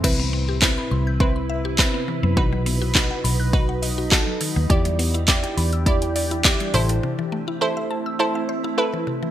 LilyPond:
<<
  \new Staff \with { instrumentName = "Synth pluck" } { \time 4/4 \key c \lydian \tempo 4 = 103 <c' e' b'>8. r16 <c' e' b'>8. r16 <c' e' b'>8. r16 <c' e' b'>8. r16 | <dis' fis' b'>8. r16 <dis' fis' b'>8. r16 <dis' fis' b'>8. r16 <dis' fis' a'>8. r16 | <e' g' d''>8. r16 <e' g' d''>8. r16 <e' g' d''>8. r16 <e' g' d''>8 <e' a' c''>8~ | <e' a' c''>8 r8 <e' a' c''>8. r16 <e' a' c''>8. r16 <e' a' b'>8. r16 | }
  \new Staff \with { instrumentName = "Synth arpeggio sound" } { \time 4/4 \key c \lydian e16 b16 c'16 g'16 r16 b''16 c'''16 g'''16 c'''16 b''16 e''16 g'16 r16 b16 e16 b16 | dis16 fis16 b16 fis'16 r16 fis''16 b''16 fis'''16 b''16 fis''16 dis''16 fis'16 r16 fis16 dis16 fis16 | d16 g16 b16 e'16 r16 g''16 b''16 e'''16 b''16 g''16 d''16 e'16 r16 g16 c16 e16 | c16 e16 a16 e'16 r16 e''16 a''16 e'''16 a''16 e''16 c''16 e'16 r16 e16 c16 e16 | }
  \new Staff \with { instrumentName = "Ambient pad" } { \time 4/4 \key c \lydian << { <c e'>1 | <fis dis'>1 | <e g'>2.~ <e g'>8 <a e'>8~ | <a e'>1 | } \\ { b'1~ | b'1 | d'2.~ d'8 c'8~ | c'1 | } >> }
  \new Staff \with { instrumentName = "Fingered electric bass" } { \clef bass \time 4/4 \key c \lydian c,4. c,2 r16 fis,16 | b,,4. b,,2 r16 dis,16 | e,4. e,2 a,,8 | r1 | }
  \new DrumStaff \with { instrumentName = "Drums" } \drummode { \time 4/4 <cymc bd>4 <hc bd sn>4 bd4 <hc bd sn>4 | bd8 hho8 <hc bd sn>8 hho8 bd8 hho8 <hc bd sn>8 hho8 | <hh bd>16 hh16 hho16 hh16 <hc hh bd sn>16 hh16 hho16 hh16 <hh bd>16 hh16 hho16 hh16 <hc hh bd sn>16 hh16 hho16 hh16 | r4 r4 r4 r4 | }
>>